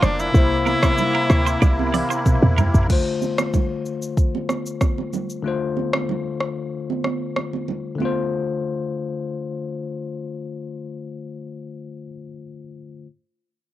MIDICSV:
0, 0, Header, 1, 7, 480
1, 0, Start_track
1, 0, Key_signature, -1, "minor"
1, 0, Tempo, 638298
1, 258, Time_signature, 4, 2, 24, 8
1, 10325, End_track
2, 0, Start_track
2, 0, Title_t, "Clean electric guitar"
2, 0, Program_c, 0, 27
2, 17, Note_on_c, 0, 72, 77
2, 92, Note_off_c, 0, 72, 0
2, 498, Note_on_c, 0, 70, 84
2, 573, Note_off_c, 0, 70, 0
2, 623, Note_on_c, 0, 72, 71
2, 692, Note_off_c, 0, 72, 0
2, 862, Note_on_c, 0, 70, 81
2, 932, Note_off_c, 0, 70, 0
2, 1101, Note_on_c, 0, 72, 84
2, 1171, Note_off_c, 0, 72, 0
2, 1217, Note_on_c, 0, 74, 93
2, 1292, Note_off_c, 0, 74, 0
2, 1458, Note_on_c, 0, 74, 80
2, 1533, Note_off_c, 0, 74, 0
2, 1582, Note_on_c, 0, 72, 77
2, 1652, Note_off_c, 0, 72, 0
2, 1939, Note_on_c, 0, 70, 76
2, 2014, Note_off_c, 0, 70, 0
2, 10325, End_track
3, 0, Start_track
3, 0, Title_t, "Tenor saxophone"
3, 0, Program_c, 1, 66
3, 23, Note_on_c, 1, 62, 93
3, 148, Note_on_c, 1, 64, 99
3, 159, Note_off_c, 1, 62, 0
3, 1701, Note_off_c, 1, 64, 0
3, 10325, End_track
4, 0, Start_track
4, 0, Title_t, "Tine electric piano"
4, 0, Program_c, 2, 4
4, 0, Control_c, 2, 64, 127
4, 0, Note_on_c, 2, 50, 85
4, 0, Note_on_c, 2, 58, 75
4, 0, Note_on_c, 2, 65, 77
4, 0, Note_on_c, 2, 72, 95
4, 218, Note_off_c, 2, 50, 0
4, 224, Note_off_c, 2, 58, 0
4, 231, Note_off_c, 2, 65, 0
4, 240, Note_on_c, 2, 48, 68
4, 252, Note_on_c, 2, 58, 64
4, 261, Note_off_c, 2, 72, 0
4, 265, Note_on_c, 2, 64, 61
4, 267, Control_c, 2, 64, 0
4, 277, Note_on_c, 2, 72, 77
4, 381, Control_c, 2, 64, 127
4, 2139, Note_off_c, 2, 48, 0
4, 2145, Note_off_c, 2, 58, 0
4, 2151, Note_off_c, 2, 64, 0
4, 2157, Note_off_c, 2, 72, 0
4, 2161, Note_on_c, 2, 50, 75
4, 2174, Note_on_c, 2, 57, 71
4, 2186, Control_c, 2, 64, 0
4, 2187, Note_on_c, 2, 65, 74
4, 2199, Note_on_c, 2, 72, 85
4, 2326, Control_c, 2, 64, 127
4, 4059, Note_off_c, 2, 50, 0
4, 4066, Note_off_c, 2, 57, 0
4, 4072, Note_off_c, 2, 65, 0
4, 4078, Note_off_c, 2, 72, 0
4, 4080, Note_on_c, 2, 50, 81
4, 4092, Note_on_c, 2, 57, 73
4, 4105, Note_on_c, 2, 65, 68
4, 4118, Note_on_c, 2, 72, 83
4, 5971, Note_off_c, 2, 50, 0
4, 5981, Note_on_c, 2, 50, 79
4, 5985, Note_off_c, 2, 57, 0
4, 5992, Note_off_c, 2, 65, 0
4, 5998, Note_off_c, 2, 72, 0
4, 6004, Note_on_c, 2, 57, 70
4, 6026, Control_c, 2, 64, 0
4, 6029, Note_on_c, 2, 65, 75
4, 6055, Note_on_c, 2, 72, 89
4, 6172, Control_c, 2, 64, 127
4, 9017, Note_off_c, 2, 50, 0
4, 9029, Note_off_c, 2, 57, 0
4, 9042, Note_off_c, 2, 65, 0
4, 9054, Note_off_c, 2, 72, 0
4, 9827, Control_c, 2, 64, 0
4, 10325, End_track
5, 0, Start_track
5, 0, Title_t, "Accordion"
5, 0, Program_c, 3, 21
5, 0, Note_on_c, 3, 46, 90
5, 0, Note_on_c, 3, 58, 79
5, 0, Note_on_c, 3, 62, 94
5, 227, Note_off_c, 3, 62, 0
5, 237, Note_off_c, 3, 46, 0
5, 238, Note_off_c, 3, 58, 0
5, 258, Note_on_c, 3, 64, 96
5, 259, Note_on_c, 3, 58, 80
5, 260, Note_on_c, 3, 48, 85
5, 2159, Note_off_c, 3, 58, 0
5, 2159, Note_off_c, 3, 64, 0
5, 2160, Note_off_c, 3, 48, 0
5, 10325, End_track
6, 0, Start_track
6, 0, Title_t, "808-style bass"
6, 0, Program_c, 4, 38
6, 18, Note_on_c, 4, 29, 89
6, 219, Note_off_c, 4, 29, 0
6, 259, Note_on_c, 4, 36, 102
6, 563, Note_off_c, 4, 36, 0
6, 978, Note_on_c, 4, 38, 99
6, 1178, Note_off_c, 4, 38, 0
6, 1218, Note_on_c, 4, 36, 102
6, 1523, Note_off_c, 4, 36, 0
6, 1824, Note_on_c, 4, 40, 92
6, 2024, Note_off_c, 4, 40, 0
6, 2064, Note_on_c, 4, 33, 91
6, 2160, Note_off_c, 4, 33, 0
6, 10325, End_track
7, 0, Start_track
7, 0, Title_t, "Drums"
7, 18, Note_on_c, 9, 37, 101
7, 19, Note_on_c, 9, 64, 77
7, 19, Note_on_c, 9, 82, 53
7, 93, Note_off_c, 9, 37, 0
7, 94, Note_off_c, 9, 64, 0
7, 95, Note_off_c, 9, 82, 0
7, 144, Note_on_c, 9, 82, 65
7, 220, Note_off_c, 9, 82, 0
7, 259, Note_on_c, 9, 36, 113
7, 259, Note_on_c, 9, 82, 68
7, 334, Note_off_c, 9, 36, 0
7, 334, Note_off_c, 9, 82, 0
7, 497, Note_on_c, 9, 63, 81
7, 499, Note_on_c, 9, 82, 57
7, 572, Note_off_c, 9, 63, 0
7, 574, Note_off_c, 9, 82, 0
7, 621, Note_on_c, 9, 37, 117
7, 622, Note_on_c, 9, 82, 68
7, 624, Note_on_c, 9, 36, 86
7, 625, Note_on_c, 9, 63, 78
7, 697, Note_off_c, 9, 37, 0
7, 697, Note_off_c, 9, 82, 0
7, 699, Note_off_c, 9, 36, 0
7, 700, Note_off_c, 9, 63, 0
7, 736, Note_on_c, 9, 82, 69
7, 740, Note_on_c, 9, 64, 84
7, 811, Note_off_c, 9, 82, 0
7, 815, Note_off_c, 9, 64, 0
7, 976, Note_on_c, 9, 37, 96
7, 978, Note_on_c, 9, 82, 55
7, 1051, Note_off_c, 9, 37, 0
7, 1053, Note_off_c, 9, 82, 0
7, 1103, Note_on_c, 9, 82, 84
7, 1179, Note_off_c, 9, 82, 0
7, 1218, Note_on_c, 9, 36, 94
7, 1218, Note_on_c, 9, 64, 85
7, 1219, Note_on_c, 9, 48, 60
7, 1219, Note_on_c, 9, 82, 67
7, 1293, Note_off_c, 9, 36, 0
7, 1293, Note_off_c, 9, 64, 0
7, 1294, Note_off_c, 9, 48, 0
7, 1294, Note_off_c, 9, 82, 0
7, 1348, Note_on_c, 9, 63, 88
7, 1423, Note_off_c, 9, 63, 0
7, 1456, Note_on_c, 9, 63, 82
7, 1459, Note_on_c, 9, 47, 75
7, 1461, Note_on_c, 9, 46, 59
7, 1461, Note_on_c, 9, 82, 56
7, 1531, Note_off_c, 9, 63, 0
7, 1534, Note_off_c, 9, 47, 0
7, 1536, Note_off_c, 9, 46, 0
7, 1536, Note_off_c, 9, 82, 0
7, 1586, Note_on_c, 9, 82, 83
7, 1661, Note_off_c, 9, 82, 0
7, 1698, Note_on_c, 9, 63, 76
7, 1699, Note_on_c, 9, 36, 100
7, 1699, Note_on_c, 9, 45, 97
7, 1699, Note_on_c, 9, 82, 81
7, 1773, Note_off_c, 9, 63, 0
7, 1774, Note_off_c, 9, 36, 0
7, 1774, Note_off_c, 9, 45, 0
7, 1774, Note_off_c, 9, 82, 0
7, 1825, Note_on_c, 9, 45, 84
7, 1827, Note_on_c, 9, 63, 85
7, 1900, Note_off_c, 9, 45, 0
7, 1903, Note_off_c, 9, 63, 0
7, 1940, Note_on_c, 9, 43, 109
7, 1940, Note_on_c, 9, 82, 53
7, 1941, Note_on_c, 9, 64, 77
7, 2015, Note_off_c, 9, 43, 0
7, 2015, Note_off_c, 9, 82, 0
7, 2016, Note_off_c, 9, 64, 0
7, 2064, Note_on_c, 9, 43, 98
7, 2064, Note_on_c, 9, 82, 65
7, 2139, Note_off_c, 9, 82, 0
7, 2140, Note_off_c, 9, 43, 0
7, 2179, Note_on_c, 9, 36, 107
7, 2180, Note_on_c, 9, 49, 89
7, 2180, Note_on_c, 9, 82, 64
7, 2255, Note_off_c, 9, 36, 0
7, 2255, Note_off_c, 9, 49, 0
7, 2255, Note_off_c, 9, 82, 0
7, 2419, Note_on_c, 9, 63, 81
7, 2420, Note_on_c, 9, 82, 56
7, 2494, Note_off_c, 9, 63, 0
7, 2495, Note_off_c, 9, 82, 0
7, 2543, Note_on_c, 9, 37, 108
7, 2544, Note_on_c, 9, 82, 66
7, 2546, Note_on_c, 9, 63, 73
7, 2618, Note_off_c, 9, 37, 0
7, 2619, Note_off_c, 9, 82, 0
7, 2621, Note_off_c, 9, 63, 0
7, 2659, Note_on_c, 9, 36, 89
7, 2659, Note_on_c, 9, 82, 69
7, 2661, Note_on_c, 9, 64, 82
7, 2734, Note_off_c, 9, 36, 0
7, 2734, Note_off_c, 9, 82, 0
7, 2736, Note_off_c, 9, 64, 0
7, 2900, Note_on_c, 9, 82, 50
7, 2975, Note_off_c, 9, 82, 0
7, 3024, Note_on_c, 9, 82, 79
7, 3099, Note_off_c, 9, 82, 0
7, 3139, Note_on_c, 9, 36, 103
7, 3140, Note_on_c, 9, 82, 67
7, 3214, Note_off_c, 9, 36, 0
7, 3215, Note_off_c, 9, 82, 0
7, 3270, Note_on_c, 9, 63, 81
7, 3345, Note_off_c, 9, 63, 0
7, 3377, Note_on_c, 9, 63, 82
7, 3378, Note_on_c, 9, 37, 86
7, 3382, Note_on_c, 9, 82, 54
7, 3452, Note_off_c, 9, 63, 0
7, 3453, Note_off_c, 9, 37, 0
7, 3458, Note_off_c, 9, 82, 0
7, 3506, Note_on_c, 9, 82, 81
7, 3581, Note_off_c, 9, 82, 0
7, 3617, Note_on_c, 9, 37, 86
7, 3618, Note_on_c, 9, 63, 68
7, 3619, Note_on_c, 9, 82, 73
7, 3620, Note_on_c, 9, 36, 94
7, 3693, Note_off_c, 9, 37, 0
7, 3694, Note_off_c, 9, 63, 0
7, 3694, Note_off_c, 9, 82, 0
7, 3695, Note_off_c, 9, 36, 0
7, 3747, Note_on_c, 9, 63, 82
7, 3823, Note_off_c, 9, 63, 0
7, 3859, Note_on_c, 9, 82, 50
7, 3860, Note_on_c, 9, 63, 52
7, 3860, Note_on_c, 9, 64, 70
7, 3934, Note_off_c, 9, 82, 0
7, 3935, Note_off_c, 9, 63, 0
7, 3935, Note_off_c, 9, 64, 0
7, 3984, Note_on_c, 9, 82, 62
7, 4059, Note_off_c, 9, 82, 0
7, 4337, Note_on_c, 9, 63, 78
7, 4412, Note_off_c, 9, 63, 0
7, 4462, Note_on_c, 9, 37, 110
7, 4466, Note_on_c, 9, 63, 70
7, 4537, Note_off_c, 9, 37, 0
7, 4541, Note_off_c, 9, 63, 0
7, 4580, Note_on_c, 9, 64, 81
7, 4655, Note_off_c, 9, 64, 0
7, 4816, Note_on_c, 9, 37, 87
7, 4891, Note_off_c, 9, 37, 0
7, 5188, Note_on_c, 9, 63, 74
7, 5263, Note_off_c, 9, 63, 0
7, 5294, Note_on_c, 9, 63, 77
7, 5296, Note_on_c, 9, 37, 81
7, 5369, Note_off_c, 9, 63, 0
7, 5371, Note_off_c, 9, 37, 0
7, 5537, Note_on_c, 9, 37, 86
7, 5537, Note_on_c, 9, 63, 66
7, 5612, Note_off_c, 9, 37, 0
7, 5612, Note_off_c, 9, 63, 0
7, 5665, Note_on_c, 9, 63, 75
7, 5740, Note_off_c, 9, 63, 0
7, 5777, Note_on_c, 9, 63, 49
7, 5777, Note_on_c, 9, 64, 67
7, 5852, Note_off_c, 9, 63, 0
7, 5852, Note_off_c, 9, 64, 0
7, 6018, Note_on_c, 9, 63, 80
7, 6093, Note_off_c, 9, 63, 0
7, 10325, End_track
0, 0, End_of_file